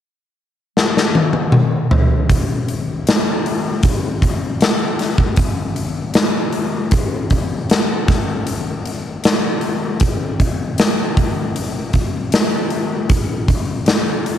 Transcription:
0.77 snare medium
0.97 snare medium
1.15 high tom medium
1.33 high tom medium
1.52 mid tom medium
1.91 floor tom medium
2.29 kick medium
2.29 open hi-hat medium
2.68 open hi-hat soft
3.07 snare loud
3.07 open hi-hat medium
3.46 open hi-hat soft
3.83 kick medium
3.83 open hi-hat medium
4.22 kick medium
4.22 open hi-hat soft
4.61 snare medium
4.61 open hi-hat medium
4.99 snare soft
4.99 open hi-hat soft
5.18 kick medium
5.36 kick medium
5.36 open hi-hat medium
5.76 open hi-hat soft
6.14 snare loud
6.14 open hi-hat medium
6.53 open hi-hat soft
6.91 kick loud
6.91 open hi-hat medium
7.30 kick medium
7.30 open hi-hat soft
7.70 snare medium
7.70 open hi-hat medium
8.08 kick medium
8.08 snare soft
8.08 open hi-hat soft
8.47 open hi-hat medium
8.86 open hi-hat soft
9.24 snare loud
9.24 open hi-hat medium
9.61 open hi-hat soft
10.00 kick loud
10.00 open hi-hat medium
10.40 kick medium
10.40 open hi-hat soft
10.78 snare loud
10.78 open hi-hat medium
11.17 kick loud
11.17 open hi-hat soft
11.56 open hi-hat medium
11.93 kick medium
11.93 open hi-hat soft
12.32 snare loud
12.32 open hi-hat medium
12.70 open hi-hat soft
13.10 kick loud
13.10 open hi-hat medium
13.48 kick medium
13.48 open hi-hat soft
13.86 snare medium
13.86 open hi-hat medium
14.26 open hi-hat soft

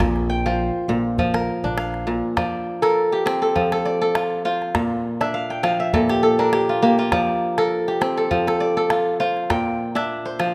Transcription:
0.00 0.69 A#1 loud
0.00 0.88 A#2 medium
0.00 0.62 C4 medium
0.00 0.50 F4 medium
0.00 0.45 C5 medium
0.00 calabash thump medium
0.00 calabash click medium
0.16 calabash click soft
0.30 1.23 G5 medium
0.46 1.18 F3 medium
0.46 1.65 C5 medium
0.88 1.47 A#1 medium
0.88 2.06 A#2 medium
1.18 2.36 F3 medium
1.18 calabash thump medium
1.34 2.61 A#4 medium
1.34 calabash click medium
1.64 2.20 A#1 medium
1.64 3.32 D4 medium
1.77 2.77 F5 medium
1.77 calabash click medium
1.94 calabash click soft
2.07 2.42 A#2 medium
2.07 calabash click soft
2.37 3.54 F3 medium
2.37 3.48 D5 medium
2.37 calabash thump medium
2.37 calabash click medium
2.82 3.41 A4 medium
2.82 3.48 A#4 medium
2.82 calabash click medium
3.12 4.54 G4 medium
3.12 calabash click soft
3.26 5.06 C4 medium
3.26 calabash click medium
3.42 3.72 A4 medium
3.56 4.79 F3 medium
3.56 calabash thump medium
3.56 calabash click soft
3.72 4.01 A4 medium
3.72 calabash click medium
3.85 4.96 D5 medium
3.85 calabash click soft
4.01 4.81 A4 medium
4.15 4.45 F4 medium
4.15 calabash click medium
4.45 5.27 F4 medium
4.45 5.64 C5 medium
4.62 calabash click soft
4.75 5.93 A#2 medium
4.75 calabash thump medium
4.75 calabash click medium
5.21 6.38 D4 medium
5.21 5.69 E5 medium
5.21 calabash click medium
5.34 5.63 F5 medium
5.50 6.43 G5 medium
5.50 calabash click soft
5.63 7.11 F3 medium
5.63 6.63 F5 medium
5.63 calabash click medium
5.80 6.75 E5 medium
5.93 7.17 A#2 medium
5.93 6.22 A4 medium
5.93 calabash thump medium
5.93 calabash click soft
6.10 6.52 G4 medium
6.10 calabash click medium
6.23 6.88 A4 medium
6.23 calabash click soft
6.39 8.07 D4 medium
6.39 7.57 A#4 medium
6.53 6.82 G4 medium
6.53 calabash click medium
6.69 6.98 F4 medium
6.82 7.64 A#3 medium
6.82 7.87 G4 medium
6.98 8.50 F4 medium
6.98 calabash click soft
7.12 8.30 F3 medium
7.12 8.23 D5 medium
7.12 calabash thump medium
7.12 calabash click medium
7.58 8.17 A4 medium
7.58 8.23 A#4 medium
7.58 calabash click medium
7.88 9.29 G4 medium
7.88 calabash click soft
8.01 9.81 C4 medium
8.01 calabash click medium
8.17 8.47 A4 medium
8.31 9.55 F3 medium
8.31 calabash thump medium
8.31 calabash click soft
8.47 8.76 A4 medium
8.47 calabash click soft
8.60 9.71 D5 medium
8.60 calabash click soft
8.77 9.56 A4 medium
8.90 9.19 F4 medium
8.90 calabash click medium
9.20 10.02 F4 medium
9.20 10.25 C5 medium
9.37 calabash click soft
9.50 10.54 A#2 medium
9.50 10.43 G5 medium
9.50 calabash thump medium
9.50 calabash click medium
9.95 10.54 D4 medium
9.95 10.45 E5 medium
9.95 calabash click soft
10.26 10.54 C5 medium
10.39 10.54 F3 medium
10.39 calabash click medium

